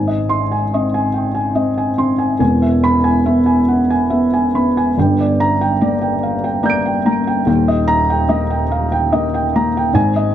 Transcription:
Already playing: G#1 G#2 G#5
0.07 D#5
0.29 C6
0.52 G#5
0.74 C4 D#5
0.94 G#5
1.14 G5
1.35 G#5
1.55 C4 D#5
1.78 G#5
1.98 C4 C6
2.18 G#5
2.39 E1 E2 G#5
2.62 E5
2.84 B5
3.04 G#5
3.26 B3 E5
3.46 G#5
3.68 F#5
3.90 G#5
4.10 B3 E5
4.33 G#5
4.55 B3 B5
4.77 G#5
4.97 G1 G2 G5
5.20 D5
5.40 A#5
5.61 G5
5.81 A#3 D5
6.01 G5
6.23 F5
6.44 G5
6.63 A#3 D5 A#5 G6
6.70 D7
6.86 G5
7.06 A#3 A#5
7.27 G5
7.46 D#1 D#2 G5
7.68 D#5
7.88 A#5
8.10 G5
8.29 A#3 D#5
8.50 G5
8.71 F5
8.92 G5
9.12 A#3 D#5
9.34 G5
9.56 A#3 A#5
9.77 G5
9.93 G#1 G#2 G#5
10.16 D#5

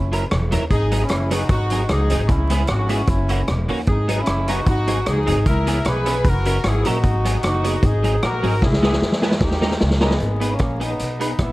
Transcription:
Already playing: F#1 C#4 E4
0.12 F#3 C#4 E4 A#4, closed hi-hat
0.31 E1, cross-stick, closed hi-hat
0.51 D#2 F#3 C#4 E4 A#4, closed hi-hat
0.71 G#1 D#4 G#4, kick, closed hi-hat
0.91 F#3 B3 D#4 G#4, closed hi-hat
1.02 C#4 E4
1.09 F#1, cross-stick, closed hi-hat
1.31 F#3 B3 D#4 F#4 G#4, closed hi-hat
1.49 G#1 D#4 F#4, kick, closed hi-hat
1.70 F#3 C4 D#4 G#4, closed hi-hat
1.89 C#2 D#4 G#4, cross-stick, closed hi-hat
2.10 G#1 F#3 C4 D#4 G#4, closed hi-hat
2.28 C#2 C#4 E4, kick, closed hi-hat
2.50 G#3 B3 E4 G#4, closed hi-hat
2.67 G#1 F#4, cross-stick, closed hi-hat
2.71 C#4
2.89 G#3 B3 E4 G#4, closed hi-hat
3.07 F#1 C#4 E4, kick, closed hi-hat
3.29 E3 A#3 C#4 F#4, closed hi-hat
3.48 E1, cross-stick, closed hi-hat
3.68 D#2 E3 A#3 C#4 F#4, open hi-hat
3.87 G#1 D#4 G#4, kick, closed hi-hat
4.08 F#3 B3 D#4 G#4, closed hi-hat
4.20 C#4 E4
4.26 F#1, cross-stick, closed hi-hat
4.48 F#3 B3 D#4 F#4 G#4, closed hi-hat
4.67 G#1 D#4 F#4, kick, closed hi-hat
4.87 F#3 C4 D#4 G#4, closed hi-hat
5.06 C#2 D#4 G#4, cross-stick, closed hi-hat
5.26 G#1 F#3 C4 D#4 G#4, closed hi-hat
5.46 C#2 E4 A#4, kick, closed hi-hat
5.66 E3 B3 C#4 G#4, closed hi-hat
5.84 B1 G#4 B4, cross-stick, closed hi-hat
6.05 E3 B3 C#4 G#4, closed hi-hat
6.24 F#1 F#4 A#4, kick, closed hi-hat
6.45 F#3 C#4 E4 A#4, closed hi-hat
6.64 G#1 E4 G#4, cross-stick, closed hi-hat
6.85 A#1 F#3 C#4 D#4 E4 F#4 A#4, closed hi-hat
7.03 G#1, kick, closed hi-hat
7.25 F#3 B3 D#4 G#4, closed hi-hat
7.43 F#1 D#4 F#4, cross-stick, closed hi-hat
7.64 F#3 B3 D#4 G#4, closed hi-hat
7.83 G#1 D#4 G#4, kick, closed hi-hat
8.03 F#3 C4 D#4 G#4, closed hi-hat
8.22 A#1 F#4 A#4, cross-stick, closed hi-hat
8.43 G#1 F#3 C4 D#4 G#4, open hi-hat
8.62 C#2 E4 G#4, kick, snare
8.73 snare
8.82 G#3 B3 E4 G#4, snare
8.93 snare
9.01 E2, snare
9.12 snare
9.22 G#3 B3 E4 G#4, snare
9.31 snare
9.41 D#2 D#4 G4, kick, snare
9.51 snare
9.61 G3 C#4 D#4 A#4, snare
9.71 snare
9.81 C#2, snare
9.91 snare
10.01 G3 G#3 B3 C#4 D#4 A#4, snare
10.11 snare
10.20 G#1, closed hi-hat
10.40 B3 D#4 G#4 B4, closed hi-hat
10.51 A#3 C#4
10.59 A#1, kick, cross-stick, closed hi-hat
10.80 B3 D#4 G#4 B4, closed hi-hat
10.99 B1, closed hi-hat
11.20 B3 D#4 G#4 B4, closed hi-hat
11.38 A#1 B3 E4, kick, cross-stick, closed hi-hat

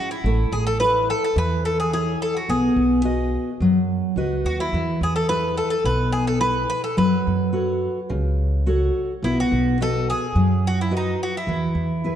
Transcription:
Already playing: C#4 E4 F#4 G#4
0.11 E4
0.24 A1 A3
0.52 A1 G#4
0.67 A4
0.80 E4 A4 B4 C#5
1.10 A4
1.24 A4
1.36 E2 E3 B4
1.65 A4
1.80 G#4
1.93 E4 G#4 A4 C#5
2.22 A4
2.37 F#4
2.49 B1 B3 G#4
2.76 B1
3.04 F#4 B4 D#5
3.61 F#2 F#3
4.16 C#2 F#4 B4 D#5
4.45 D#2 F#4
4.60 E4
4.73 E2 E3
5.01 E2 G#4
5.16 A4
5.29 E4 G#4 B4
5.57 A4
5.70 A4
5.84 B1 B2 B4
6.12 G#4
6.27 A4
6.40 E4 G#4 B4
6.70 B4
6.84 A4
6.97 F#2 F#3 B4
7.27 F#2
7.53 F#4 A4 C#5
8.09 C#2 C#3
8.66 F#4 A4 C#5
9.23 B1 B3 E4
9.40 F#4
9.52 B1
9.80 F#4 A4 B4 D#5
10.10 G#4
10.35 F#2 F#3
10.67 F#4
10.81 E4
10.91 F#4 B4 D#5
10.97 D#4
11.23 F#4
11.37 E4
11.47 E2 E3
11.75 E2
12.04 E4 G#4 B4

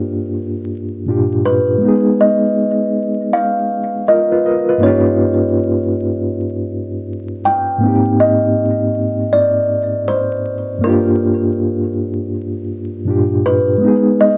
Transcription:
Already playing: G2 A#3 D4 F4 G4
1.05 G2 A#2 D4 F4
1.10 G4
1.46 B4
1.78 G#3 B3
1.85 D#4 G#4
2.21 D#5
3.33 F5
4.08 F4 A#4 D#5
4.31 F4 B4
4.46 A#4 D#5
4.69 F4 B4
4.78 G2 A#3 D#4
4.83 C#4 F4 C#5
4.88 G4
7.45 G5
7.78 G#2 A#3
7.83 C4 D#4
7.88 G4
8.20 D#5
9.33 D5
10.08 C5
10.79 G2 A#3
10.84 D4 F4 A#4
10.89 G4
13.05 G2 A#2 D4 F4
13.10 G4
13.46 B4
13.78 G#3 B3
13.85 D#4 G#4
14.21 D#5

